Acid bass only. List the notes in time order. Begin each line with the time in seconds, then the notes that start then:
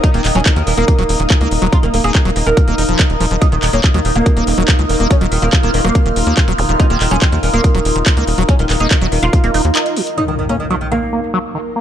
0.14 A#3
0.35 F#3
0.56 D#3
0.77 A#3
0.99 F#3
1.20 D#3
1.41 A#3
1.62 F#3
1.83 D#3
2.04 A#3
2.25 F#3
2.46 D#3
2.68 A#3
2.78 D#4
2.89 F3
2.99 D#3
3.20 F3
3.31 F3
3.52 D#3
3.73 A#3
3.94 F#3
4.16 D#3
4.37 A#3
4.58 F#3
4.79 D#3
5.00 A#3
5.21 F#3
5.42 D#3
5.63 A#3
5.84 F#3
6.06 D#3
6.27 A#3
6.48 F#3
6.69 D#3
6.90 A#3
7.11 F#3
7.32 D#3
7.54 A#3
7.75 F#3
7.96 D#3
8.17 A#3
8.38 F#3
8.59 D#3
8.80 A#3
9.01 F#3
9.23 D#3
9.44 A#3
9.54 D#4
9.75 D#4
9.96 D#3
10.28 D#3
10.49 A#3
10.70 F#3
10.92 D#3
11.13 A#3
11.34 F#3
11.55 D#3
11.76 A#3